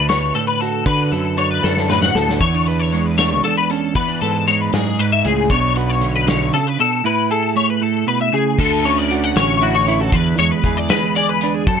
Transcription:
0.00 0.31 D2 medium
0.00 0.85 D3 medium
0.00 1.37 D4 medium
0.09 0.86 B4 medium
0.09 0.35 C#5 medium
0.09 snare medium
0.09 closed hi-hat medium
0.34 0.83 A2 medium
0.34 0.47 A4 medium
0.34 closed hi-hat medium
0.47 0.60 B4 medium
0.60 2.16 F#4 medium
0.60 0.86 A4 medium
0.60 closed hi-hat medium
0.86 1.10 D3 medium
0.86 2.92 D3 medium
0.86 1.12 B4 medium
0.86 kick medium
0.86 closed hi-hat medium
1.12 1.61 F#2 medium
1.12 1.38 A4 medium
1.12 1.62 B4 soft
1.12 closed hi-hat medium
1.37 2.44 D4 medium
1.37 1.50 C#5 medium
1.37 closed hi-hat medium
1.51 1.64 B4 medium
1.63 2.12 F#2 medium
1.63 1.90 A4 medium
1.63 2.68 B4 medium
1.63 snare soft
1.77 snare soft
1.89 2.38 A2 medium
1.89 2.02 B4 medium
1.89 snare medium
2.02 2.15 F#5 medium
2.02 snare medium
2.15 2.39 D2 medium
2.15 2.41 F#4 soft
2.15 2.41 A4 medium
2.15 snare medium
2.29 snare medium
2.41 3.40 E2 medium
2.41 3.44 E2 medium
2.41 2.54 B3 soft
2.41 2.67 C#5 medium
2.41 kick medium
2.41 closed hi-hat medium
2.54 3.19 D4 medium
2.66 2.80 B4 medium
2.66 4.23 B4 medium
2.66 closed hi-hat medium
2.80 3.06 C#5 medium
2.92 3.93 G#3 soft
2.92 closed hi-hat medium
3.06 3.17 B4 medium
3.18 3.96 D4 medium
3.18 3.44 C#5 medium
3.18 snare medium
3.18 closed hi-hat medium
3.44 3.94 E2 medium
3.44 3.57 A4 medium
3.44 closed hi-hat medium
3.58 3.70 B4 medium
3.70 3.93 C#4 soft
3.70 3.95 A4 medium
3.70 closed hi-hat medium
3.95 4.73 E2 medium
3.95 4.20 E3 medium
3.95 4.08 B3 soft
3.95 4.21 B4 medium
3.95 kick medium
3.95 closed hi-hat medium
4.08 5.50 D4 soft
4.21 4.70 G#2 medium
4.21 4.47 A4 medium
4.21 5.76 B4 soft
4.21 closed hi-hat soft
4.48 5.47 G#3 medium
4.48 4.61 C#5 medium
4.48 closed hi-hat medium
4.61 4.74 B4 medium
4.73 4.99 F#2 medium
4.73 5.22 G#2 medium
4.73 4.99 G#4 medium
4.73 snare medium
4.73 closed hi-hat medium
4.99 5.25 G#2 medium
4.99 5.12 B4 medium
4.99 closed hi-hat medium
5.12 5.25 E5 medium
5.25 5.49 C#2 medium
5.25 5.50 A2 medium
5.25 5.51 G#4 medium
5.25 closed hi-hat medium
5.50 6.49 B1 medium
5.50 6.02 B2 medium
5.50 7.02 D4 soft
5.50 5.77 C#5 medium
5.50 kick loud
5.50 closed hi-hat medium
5.76 7.02 F#4 medium
5.76 5.90 B4 medium
5.76 closed hi-hat medium
5.90 6.15 C#5 medium
6.01 6.25 D3 medium
6.01 closed hi-hat medium
6.16 6.28 B4 medium
6.26 6.53 D3 medium
6.26 6.53 C#5 medium
6.26 snare medium
6.26 closed hi-hat medium
6.53 6.79 C#3 medium
6.53 6.67 A4 medium
6.53 closed hi-hat medium
6.67 6.79 B4 medium
6.79 7.04 B2 medium
6.79 7.05 A4 medium
6.79 closed hi-hat medium
7.04 7.80 A2 medium
7.04 8.56 E4 medium
7.04 7.31 B4 medium
7.31 8.56 G#4 soft
7.31 7.56 A4 medium
7.56 8.56 A3 medium
7.56 7.69 C#5 medium
7.70 7.82 B4 medium
7.82 8.06 A2 medium
7.82 8.08 A4 medium
8.07 8.32 B2 medium
8.07 8.21 B4 medium
8.21 8.34 E5 medium
8.32 8.59 C#3 medium
8.32 8.59 G#4 medium
8.58 9.32 D2 medium
8.58 11.67 D3 medium
8.58 8.85 A4 medium
8.58 kick loud
8.58 crash loud
8.84 9.36 C#4 medium
8.84 8.98 C#5 medium
8.84 closed hi-hat medium
8.98 9.24 D5 medium
9.11 9.62 F#4 soft
9.11 closed hi-hat medium
9.24 9.36 F#5 medium
9.36 10.09 A1 loud
9.36 10.11 C#4 medium
9.36 9.62 C#5 medium
9.36 snare loud
9.36 closed hi-hat medium
9.62 9.76 E4 medium
9.62 9.75 F#4 medium
9.62 closed hi-hat medium
9.75 9.88 F#4 soft
9.75 10.00 C#5 medium
9.87 10.01 E4 medium
9.87 closed hi-hat medium
10.00 10.14 F#4 medium
10.00 10.13 A4 medium
10.12 10.37 E2 medium
10.12 11.67 E2 medium
10.12 10.38 B4 medium
10.12 kick loud
10.12 closed hi-hat medium
10.38 10.51 E2 medium
10.38 10.90 G#3 medium
10.38 10.51 C#5 medium
10.38 closed hi-hat medium
10.51 10.77 B4 medium
10.64 10.88 E2 loud
10.64 11.17 G#4 medium
10.64 kick medium
10.64 closed hi-hat medium
10.77 10.90 D5 medium
10.89 11.65 G#3 medium
10.89 11.16 B4 medium
10.89 snare loud
10.89 closed hi-hat medium
11.15 11.65 G#4 medium
11.15 11.29 D5 medium
11.15 closed hi-hat medium
11.29 11.55 B4 medium
11.41 11.65 D4 medium
11.41 closed hi-hat medium
11.55 11.67 G#4 medium
11.67 11.80 F#2 loud
11.67 11.80 F#2 medium
11.67 11.80 A4 medium
11.67 kick loud
11.67 closed hi-hat medium

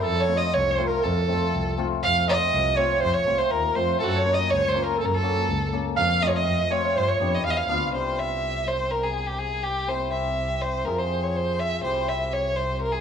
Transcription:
0.02 0.35 F2 medium
0.02 0.34 A4 medium
0.02 0.21 A4 medium
0.20 0.39 C#5 medium
0.28 0.41 A3 medium
0.28 0.42 C4 medium
0.28 0.42 F4 medium
0.36 0.53 D#5 medium
0.36 0.55 D#5 medium
0.53 0.70 C2 medium
0.53 0.89 C#5 medium
0.53 0.72 C#5 medium
0.71 0.86 C5 medium
0.78 0.91 A3 medium
0.78 0.91 C4 medium
0.78 0.92 F4 medium
0.86 1.05 A#4 medium
1.04 1.34 F2 loud
1.04 1.78 A4 medium
1.28 1.41 A3 soft
1.28 1.41 C4 medium
1.28 1.42 F4 medium
1.54 1.69 C2 medium
1.77 1.91 A3 medium
1.77 1.91 C4 medium
1.77 1.91 F4 medium
2.04 2.33 F2 medium
2.04 2.27 F5 loud
2.04 2.29 F5 loud
2.27 2.40 A3 medium
2.27 2.40 C4 medium
2.27 2.41 F4 medium
2.27 2.77 D#5 medium
2.27 2.79 D#5 loud
2.53 2.68 C2 medium
2.76 2.90 A3 medium
2.76 2.90 C4 medium
2.76 2.90 F4 medium
2.76 3.02 C#5 medium
3.01 3.18 F2 medium
3.01 3.16 C5 medium
3.01 3.15 C5 medium
3.14 3.40 C#5 medium
3.26 3.50 C2 medium
3.26 3.39 A3 medium
3.26 3.39 C4 medium
3.26 3.40 F4 medium
3.38 3.52 C5 medium
3.38 3.53 C5 medium
3.51 3.75 D#2 medium
3.51 3.77 A#4 medium
3.75 3.99 F2 medium
3.75 3.88 A3 medium
3.75 3.89 C4 medium
3.75 3.89 F4 medium
3.75 3.99 C5 medium
3.75 4.00 C5 medium
4.00 4.31 F#2 medium
4.00 4.11 F#4 medium
4.00 4.05 A4 medium
4.00 4.07 A4 medium
4.08 4.15 A4 medium
4.08 4.19 A4 medium
4.15 4.32 C#5 medium
4.15 4.36 C#5 medium
4.25 4.38 A#3 medium
4.25 4.38 C#4 soft
4.25 4.38 F#4 medium
4.33 4.49 D#5 medium
4.33 4.52 D#5 medium
4.49 4.66 C#2 medium
4.49 4.58 C#5 medium
4.49 4.70 C#5 loud
4.57 4.64 C5 medium
4.63 4.84 C#5 medium
4.69 4.85 C5 medium
4.74 4.87 A#3 medium
4.74 4.87 C#4 medium
4.74 4.87 F4 medium
4.83 4.97 A#4 medium
4.83 5.00 A#4 medium
4.98 5.29 F#2 medium
4.98 5.12 A4 medium
4.98 5.06 A4 medium
5.05 5.15 A#4 medium
5.14 5.69 A4 medium
5.14 5.73 A4 medium
5.23 5.36 A#3 medium
5.23 5.36 C#4 medium
5.23 5.36 F#4 medium
5.49 5.63 C#2 medium
5.73 5.85 A#3 medium
5.73 5.85 C#4 medium
5.73 5.86 A4 medium
5.96 6.27 F2 loud
5.96 6.20 F5 loud
5.96 6.24 F5 loud
6.22 6.34 A3 medium
6.22 6.35 C4 soft
6.22 6.35 F4 medium
6.22 6.35 D#5 medium
6.22 6.29 D#5 loud
6.28 6.37 C#5 medium
6.36 6.68 D#5 medium
6.36 6.73 D#5 medium
6.47 6.61 F2 medium
6.70 6.83 A3 medium
6.70 6.83 C4 medium
6.70 6.84 F4 medium
6.70 6.97 C#5 medium
6.70 6.99 C#5 medium
6.95 7.10 G2 medium
6.95 7.07 C5 medium
6.95 7.10 C5 loud
7.07 7.46 C#5 medium
7.07 7.36 C#5 medium
7.20 7.42 F2 medium
7.20 7.32 B3 medium
7.20 7.33 D4 soft
7.20 7.33 G4 medium
7.34 7.45 D#5 medium
7.44 7.66 E2 medium
7.44 7.57 F5 medium
7.44 7.52 F5 medium
7.50 7.58 D#5 medium
7.57 7.68 F5 medium
7.68 7.91 D2 medium
7.68 7.81 B3 medium
7.68 7.81 D4 medium
7.68 7.82 F4 medium
7.68 7.91 F5 medium
7.68 7.92 F5 medium
7.92 9.88 C2 medium
7.92 9.87 C4 medium
7.92 9.88 E4 soft
7.92 9.90 G4 medium
7.92 8.20 C5 medium
8.19 8.69 E5 medium
8.68 8.93 C5 medium
8.91 9.05 A#4 medium
9.03 9.28 G#4 medium
9.27 9.40 G4 medium
9.39 9.65 G#4 medium
9.63 9.90 G4 medium
9.88 10.88 C2 medium
9.88 10.84 C4 medium
9.88 10.92 E4 soft
9.88 10.93 G4 medium
9.88 10.12 C5 medium
10.13 10.63 E5 medium
10.61 10.87 C5 medium
10.85 11.85 F2 medium
10.85 11.81 C4 medium
10.85 11.89 F4 soft
10.85 11.91 G#4 medium
10.85 11.00 A#4 medium
10.98 11.25 C5 medium
11.23 11.38 C#5 medium
11.36 11.61 C5 medium
11.59 11.83 E5 medium
11.82 13.01 C2 medium
11.82 13.01 C4 medium
11.82 13.01 E4 soft
11.82 13.01 G4 medium
11.82 12.10 C5 medium
12.08 12.34 E5 medium
12.33 12.57 C#5 medium
12.56 12.80 C5 medium
12.81 12.94 A#4 medium
12.92 13.01 G#4 medium

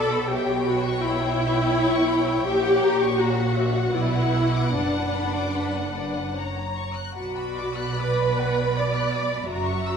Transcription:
0.00 2.42 B1 soft
0.00 2.42 B2 medium
0.00 0.30 A4 medium
0.00 0.27 D5 medium
0.00 0.26 B5 medium
0.00 0.11 D6 soft
0.12 0.30 B5 soft
0.30 0.67 G4 medium
0.30 3.96 C#5 medium
0.30 0.47 E5 soft
0.30 3.16 G5 medium
0.48 0.66 G5 soft
0.66 1.02 F#4 medium
0.66 0.84 B5 soft
0.84 1.02 C#6 soft
1.02 2.46 E4 medium
1.02 1.20 B5 medium
1.21 1.38 G5 soft
1.38 1.56 E5 medium
1.55 1.73 G5 soft
1.74 1.92 B5 soft
1.91 2.09 C#6 soft
2.09 2.27 B5 soft
2.28 2.46 G5 medium
2.45 3.93 A#1 medium
2.45 3.93 A#2 medium
2.45 3.19 G4 medium
2.45 2.63 E5 medium
2.64 2.83 F#5 medium
2.84 3.02 A#5 soft
3.02 3.21 C#6 soft
3.20 3.96 F#4 medium
3.20 6.37 F#5 medium
3.20 3.39 A#5 medium
3.39 3.58 F#5 soft
3.57 3.76 E5 soft
3.76 3.96 F#5 soft
3.95 4.74 B1 medium
3.95 4.74 B2 medium
3.95 4.75 E4 medium
3.95 6.33 B4 soft
3.95 4.13 D5 soft
4.14 4.34 F#5 soft
4.34 4.55 B5 soft
4.55 4.75 D6 soft
4.75 6.96 F#1 soft
4.75 6.96 F#2 medium
4.75 6.34 D4 medium
4.75 4.94 D5 soft
4.95 5.16 F#5 soft
5.15 5.36 B5 soft
5.34 5.55 D6 soft
5.54 5.76 B5 soft
5.75 5.96 F#5 soft
5.95 6.17 D5 soft
6.16 6.35 F#5 soft
6.36 6.95 C#5 soft
6.36 6.55 F#5 soft
6.36 6.97 A#5 soft
6.57 6.77 A#5 soft
6.78 6.97 C#6 soft
6.96 7.16 F#6 soft
7.16 9.45 B1 soft
7.16 9.46 B2 soft
7.16 7.96 F#4 medium
7.16 9.45 D5 soft
7.16 7.35 F#5 soft
7.16 9.45 B5 soft
7.37 7.58 B5 soft
7.57 7.79 D6 soft
7.78 7.99 F#6 soft
7.99 8.76 B4 medium
7.99 8.19 D6 soft
8.18 8.38 B5 soft
8.39 8.58 F#5 soft
8.58 8.77 B5 soft
8.76 9.49 D5 medium
8.76 8.95 D6 soft
8.96 9.14 F#6 soft
9.13 9.31 D6 soft
9.32 9.50 B5 soft
9.49 9.97 F#1 soft
9.49 9.97 F#2 soft
9.49 9.97 F#4 medium
9.49 9.97 E5 soft
9.49 9.66 A#5 soft
9.49 9.97 A#5 soft
9.66 9.85 C#6 soft
9.85 9.97 E6 soft

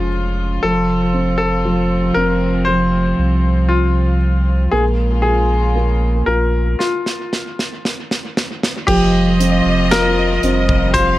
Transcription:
0.00 0.59 F1 medium
0.00 0.59 C#3 medium
0.00 0.59 F3 soft
0.00 0.59 G#3 soft
0.00 0.66 C#4 soft
0.00 0.66 F4 medium
0.00 4.68 F4 medium
0.62 2.12 F1 medium
0.62 4.68 C3 medium
0.62 4.68 F3 medium
0.62 1.64 F3 medium
0.62 4.68 C4 medium
0.62 1.36 A4 medium
1.14 2.15 C4 soft
1.38 2.17 A4 medium
1.65 2.66 F3 soft
2.14 3.14 F1 medium
2.14 4.17 C4 soft
2.14 2.68 A#4 medium
2.65 4.68 F3 soft
2.65 3.72 C5 medium
3.19 4.68 C2 medium
3.69 4.75 F4 medium
4.71 6.23 A#1 medium
4.71 6.77 C#3 medium
4.71 6.77 G#3 soft
4.71 6.77 A#3 soft
4.71 5.74 A#3 medium
4.71 6.77 F4 medium
4.71 4.83 G#4 medium
5.22 6.26 F4 soft
5.22 6.29 G#4 medium
5.76 6.76 A#3 soft
6.26 6.76 A#1 medium
6.26 6.78 F4 soft
6.26 6.80 A#4 medium
6.79 7.80 F4 medium
6.79 snare soft
7.06 snare soft
7.33 snare soft
7.59 snare soft
7.85 snare medium
8.11 snare medium
8.37 snare medium
8.63 snare medium
8.87 9.62 F1 medium
8.87 11.19 C3 medium
8.87 11.19 F3 medium
8.87 11.19 G3 medium
8.87 10.93 F4 medium
8.87 9.94 G4 medium
8.87 10.91 D#5 medium
8.87 kick loud
8.87 crash medium
9.40 10.42 C4 soft
9.40 closed hi-hat medium
9.66 10.39 F1 medium
9.91 10.93 F4 medium
9.91 10.98 A#4 medium
9.91 snare loud
9.91 closed hi-hat medium
10.43 11.19 F1 loud
10.43 11.19 C4 medium
10.43 closed hi-hat medium
10.69 kick medium
10.94 11.19 F4 medium
10.94 11.19 G4 medium
10.94 11.19 C5 medium
10.94 11.19 F5 medium
10.94 kick medium
10.94 closed hi-hat medium

